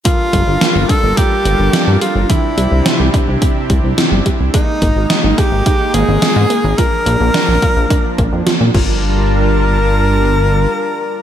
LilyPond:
<<
  \new Staff \with { instrumentName = "Tenor saxophone" } { \time 4/4 \key g \dorian \tempo 4 = 107 f'4. a'8 g'4. f'8 | e'2 r2 | ees'4. g'4 aes'4. | bes'2. r8 bes'8~ |
bes'1 | }
  \new Staff \with { instrumentName = "Supersaw synth" } { \time 4/4 \key g \dorian << { <g d' f' bes'>1 | <c c' g'>1 | <aes ees'>1 | <f d'>2.~ <f d'>8 <g d' f' bes' a''>8~ |
<g d' f' bes' a''>1 | } \\ { a'1 | e'1 | bes1~ | bes2.~ bes8 r8 |
r1 | } >> }
  \new Staff \with { instrumentName = "Synth arpeggio sound" } { \time 4/4 \key g \dorian f8 g8 bes8 d'8 bes8 g8 f8 g8 | e8 g8 c'8 d'8 c'8 g8 e8 g8 | aes8 bes8 ees'8 aes'8 ees'8 bes8 aes8 bes8 | f8 bes8 d'8 f'8 d'8 bes8 f8 f8~ |
f8 r2. r8 | }
  \new Staff \with { instrumentName = "Analog synth bass" } { \clef bass \time 4/4 \key g \dorian r8 g,,16 g,,16 r16 g,,16 r16 g,,16 r8 g,,16 g,,16 r16 g,16 r16 g,,16 | r8 c,16 c,16 r16 c,16 r16 c,16 r8 c,16 c,16 r16 g,,16 r16 c,16 | r8 aes,,16 aes,,16 r16 aes,,16 r16 aes,,16 r8 aes,,16 aes,,16 r16 aes,16 r16 aes,,16 | r8 bes,,16 bes,,16 r16 bes,,16 r16 bes,,16 r8 bes,,16 f,16 r16 bes,16 g,,8~ |
g,,2. r4 | }
  \new DrumStaff \with { instrumentName = "Drums" } \drummode { \time 4/4 <hh bd>8 <hh bd>8 <hh sn>8 <hh bd>8 <hh bd>8 hh8 <hh sn>8 hh8 | <hh bd>8 hh8 <hh sn>8 <hh bd>8 <hh bd>8 <hh bd>8 <hh sn>8 <hh bd>8 | <hh bd>8 <hh bd>8 <hh sn>8 <hh bd>8 <hh bd>8 hh8 <hh sn>8 hh8 | <hh bd>8 hh8 <hh sn>8 <hh bd>8 <hh bd>8 <hh bd>8 <hh sn>8 <cymc bd>8 |
r4 r4 r4 r4 | }
>>